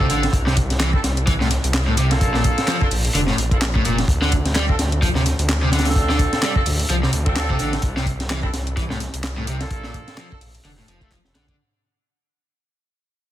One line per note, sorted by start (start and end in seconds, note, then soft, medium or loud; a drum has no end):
0.00 0.32 C4 loud
0.00 0.32 D4 medium
0.00 0.32 F4 medium
0.00 0.32 A4 loud
0.10 0.28 A1 medium
0.10 0.23 D3 medium
0.10 closed hi-hat medium
0.23 snare soft
0.23 closed hi-hat soft
0.33 0.99 C2 loud
0.33 kick loud
0.33 closed hi-hat medium
0.33 closed hi-hat soft
0.46 0.56 C3 loud
0.46 snare medium
0.57 kick loud
0.57 closed hi-hat medium
0.70 snare soft
0.70 closed hi-hat soft
0.80 0.89 E3 medium
0.80 snare loud
0.80 clap loud
0.80 closed hi-hat medium
0.80 closed hi-hat soft
0.93 0.99 C4 medium
0.93 0.99 D4 medium
0.93 0.99 E4 medium
0.93 0.99 A4 loud
0.93 kick loud
1.04 1.58 C2 loud
1.04 snare medium
1.04 closed hi-hat medium
1.17 closed hi-hat soft
1.27 1.32 E3 medium
1.27 kick loud
1.27 closed hi-hat medium
1.27 closed hi-hat soft
1.40 1.47 A2 medium
1.40 snare soft
1.51 snare soft
1.51 closed hi-hat medium
1.64 2.23 C2 medium
1.64 closed hi-hat soft
1.74 snare loud
1.74 clap loud
1.74 closed hi-hat medium
1.74 closed hi-hat soft
1.87 1.94 A2 loud
1.97 2.10 C3 medium
1.97 closed hi-hat medium
2.10 2.78 A#3 medium
2.10 2.78 D4 medium
2.10 2.78 F4 medium
2.10 2.78 A4 loud
2.10 snare soft
2.10 closed hi-hat soft
2.21 2.52 A#1 medium
2.21 kick loud
2.21 closed hi-hat loud
2.21 closed hi-hat soft
2.34 2.44 A#2 loud
2.34 snare medium
2.44 kick loud
2.44 closed hi-hat medium
2.58 snare medium
2.58 closed hi-hat soft
2.67 2.77 F3 medium
2.67 snare loud
2.67 clap loud
2.67 closed hi-hat medium
2.67 closed hi-hat soft
2.81 2.86 A#3 loud
2.81 2.86 D4 medium
2.81 2.86 F4 medium
2.81 2.86 A4 loud
2.81 kick medium
2.91 3.09 A#1 loud
2.91 closed hi-hat medium
2.91 open hi-hat medium
3.05 closed hi-hat soft
3.15 3.33 F1 loud
3.15 3.20 D3 medium
3.15 closed hi-hat soft
3.15 closed hi-hat medium
3.27 3.35 A2 medium
3.27 snare soft
3.38 3.81 A#1 loud
3.38 closed hi-hat medium
3.51 3.56 A#3 medium
3.51 3.56 D4 medium
3.51 3.56 F4 medium
3.51 3.57 A4 medium
3.51 kick medium
3.51 closed hi-hat soft
3.61 snare loud
3.61 clap loud
3.61 closed hi-hat medium
3.61 closed hi-hat soft
3.75 3.82 A2 loud
3.75 kick medium
3.85 4.03 F1 medium
3.85 3.98 A#2 medium
3.85 closed hi-hat medium
3.98 snare soft
3.98 closed hi-hat soft
4.08 4.74 D2 loud
4.08 kick loud
4.08 closed hi-hat soft
4.08 closed hi-hat medium
4.22 4.31 D3 loud
4.22 snare medium
4.32 kick loud
4.32 closed hi-hat medium
4.46 snare soft
4.46 closed hi-hat soft
4.55 4.64 G3 medium
4.55 snare loud
4.55 clap loud
4.55 closed hi-hat medium
4.55 closed hi-hat soft
4.68 4.74 C4 medium
4.68 4.74 D4 medium
4.68 4.74 F4 medium
4.68 4.74 A4 loud
4.68 kick medium
4.79 5.33 D2 loud
4.79 snare medium
4.79 closed hi-hat medium
4.92 closed hi-hat soft
5.02 5.07 F3 medium
5.02 kick loud
5.02 closed hi-hat soft
5.02 closed hi-hat loud
5.15 5.22 C3 medium
5.15 snare medium
5.26 snare soft
5.26 closed hi-hat medium
5.39 6.27 D2 medium
5.39 closed hi-hat soft
5.49 snare loud
5.49 clap loud
5.49 closed hi-hat medium
5.49 closed hi-hat soft
5.62 5.69 C3 loud
5.72 5.85 D3 medium
5.72 snare medium
5.72 closed hi-hat medium
5.79 snare medium
5.79 closed hi-hat medium
5.85 6.53 C4 medium
5.85 6.53 D4 medium
5.85 6.53 F4 medium
5.85 6.53 A4 loud
5.85 snare medium
5.85 closed hi-hat medium
5.85 closed hi-hat soft
5.90 snare medium
5.90 closed hi-hat medium
5.96 kick loud
5.96 closed hi-hat medium
5.96 closed hi-hat soft
6.09 6.19 D3 loud
6.09 snare medium
6.19 kick loud
6.19 closed hi-hat medium
6.33 snare medium
6.33 closed hi-hat soft
6.43 6.52 G3 medium
6.43 snare loud
6.43 clap loud
6.43 closed hi-hat soft
6.43 closed hi-hat medium
6.56 6.61 C4 loud
6.56 6.61 D4 medium
6.56 6.61 F4 medium
6.56 6.61 A4 loud
6.56 kick loud
6.66 6.84 D2 loud
6.66 closed hi-hat medium
6.66 open hi-hat medium
6.80 closed hi-hat soft
6.89 7.08 C2 loud
6.89 6.95 F3 medium
6.89 closed hi-hat soft
6.89 closed hi-hat medium
7.03 7.10 C3 medium
7.03 snare soft
7.13 7.56 D2 medium
7.13 closed hi-hat medium
7.26 7.82 C4 loud
7.26 7.82 D4 medium
7.26 7.82 F4 medium
7.26 7.82 A4 loud
7.26 kick loud
7.26 closed hi-hat soft
7.36 snare loud
7.36 clap loud
7.36 closed hi-hat soft
7.36 closed hi-hat medium
7.50 7.57 C3 loud
7.50 kick medium
7.59 7.78 A1 medium
7.59 7.73 D3 medium
7.59 closed hi-hat medium
7.73 snare soft
7.73 closed hi-hat soft
7.82 8.49 C2 loud
7.82 kick loud
7.82 closed hi-hat medium
7.82 closed hi-hat soft
7.97 8.06 C3 loud
7.97 snare medium
8.06 kick loud
8.06 closed hi-hat medium
8.20 snare soft
8.20 closed hi-hat soft
8.29 8.39 E3 medium
8.29 snare loud
8.29 clap loud
8.29 closed hi-hat medium
8.29 closed hi-hat soft
8.43 8.49 C4 medium
8.43 8.49 D4 medium
8.43 8.48 E4 medium
8.43 8.48 A4 loud
8.43 kick loud
8.53 9.08 C2 loud
8.53 snare medium
8.53 closed hi-hat medium
8.67 closed hi-hat soft
8.77 8.82 E3 medium
8.77 kick loud
8.77 closed hi-hat soft
8.77 closed hi-hat medium
8.90 8.97 A2 medium
8.90 snare medium
9.00 snare soft
9.00 closed hi-hat medium
9.14 9.67 C2 medium
9.14 closed hi-hat soft
9.24 snare loud
9.24 clap loud
9.24 closed hi-hat soft
9.24 closed hi-hat medium
9.37 9.44 A2 loud
9.47 9.60 C3 medium
9.47 closed hi-hat medium
9.60 10.28 A#3 medium
9.60 10.28 D4 medium
9.60 10.28 F4 medium
9.60 10.28 A4 loud
9.60 snare soft
9.60 closed hi-hat soft
9.71 10.02 A#1 medium
9.71 kick loud
9.71 closed hi-hat medium
9.71 closed hi-hat soft
9.84 9.94 A#2 loud
9.84 snare medium
9.94 kick loud
9.94 closed hi-hat medium
10.08 snare medium
10.08 closed hi-hat soft
10.17 10.27 F3 medium
10.17 snare loud
10.17 clap loud
10.17 closed hi-hat medium
10.17 closed hi-hat soft
10.31 10.36 A#3 loud
10.31 10.36 D4 medium
10.31 10.36 F4 medium
10.31 10.36 A4 loud
10.31 kick medium
10.41 10.59 A#1 loud
10.41 closed hi-hat medium
10.41 open hi-hat medium
10.55 closed hi-hat soft
10.65 10.83 F1 loud
10.65 10.70 D3 medium
10.65 closed hi-hat soft
10.78 10.85 A2 medium
10.88 11.19 F1 loud
10.88 11.00 F3 medium
10.88 closed hi-hat medium
11.01 11.11 A3 medium
11.01 11.07 A#3 medium
11.01 11.07 D4 medium
11.01 11.07 F4 medium
11.01 11.07 A4 medium
11.01 kick loud
11.01 closed hi-hat soft
11.11 11.17 F3 medium
11.11 kick medium
11.11 clap loud
11.11 closed hi-hat soft
11.11 closed hi-hat medium
11.25 11.32 F1 medium
11.25 snare soft
11.35 11.53 A#1 medium
11.35 11.44 D3 loud
11.35 snare loud
11.35 closed hi-hat medium
11.48 11.55 D3 medium
11.48 kick medium
11.48 closed hi-hat soft